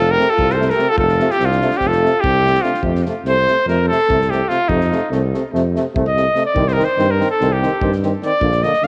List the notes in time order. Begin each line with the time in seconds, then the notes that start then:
Already playing: F1 F4 A4
0.11 G4 A#4
0.18 C3 A3, snare
0.30 F4 A4
0.38 C2, kick
0.50 C5, snare
0.55 A3 A4
0.60 C3, snare
0.70 A#4, snare
0.75 A3 G4, snare
0.80 C3
0.89 F4 A4
0.97 F1 A4, kick
1.06 F4, snare
1.20 C3 A3, snare
1.30 G4, snare
1.37 C2 C4, snare
1.45 F4
1.49 D4, snare
1.61 C3 A3, snare
1.71 snare
1.77 C4 G4, kick, snare
1.82 F1
1.87 F4 A4
1.92 snare
2.02 C3 A3, snare
2.21 C2 C4 G4, kick
2.43 C3 A3, snare
2.55 snare
2.62 C3 A3 D4 F4, snare
2.74 snare
2.82 F2 C3 A3, kick
2.95 snare
3.05 C3 A3, snare
3.24 C2 C3 A3, snare
3.29 C5
3.48 C3 A3, snare
3.66 F2 C3 A3 A#4, snare
3.88 C3 A3 A4, snare
4.09 C2 C3 A3, kick
4.21 snare
4.30 C3 A3 G4, snare
4.48 C3 A3 F4, snare
4.68 F2 C3 A3 D#4, kick
4.81 snare
4.92 C3 A3, snare
5.10 C2 C3 A3, snare
5.33 C3 A3, snare
5.52 F2 C3 A3, snare
5.75 C3 A3, snare
5.94 C2 C3 A3, kick
6.08 D#5
6.16 C3 A3, snare
6.34 C3 A3, snare
6.46 D5
6.54 C2 D#3 C4, kick
6.68 C5, snare
6.73 D#3 A#4
6.77 C4, snare
6.84 C5
6.97 G2 D#3 C4, snare
7.11 A#4
7.18 D#3 C4, snare
7.30 A4
7.40 C2 D#3 C4, snare
7.52 G4
7.62 D#3 C4, snare
7.81 G2 D#3 C4, kick
7.92 snare
8.03 D#3 C4, snare
8.22 D#3 C4 D5, snare
8.41 A#1 D3 A#3, kick
8.52 snare
8.63 D3 A#3 D#5, snare
8.73 snare
8.82 D3 A#3 F5, snare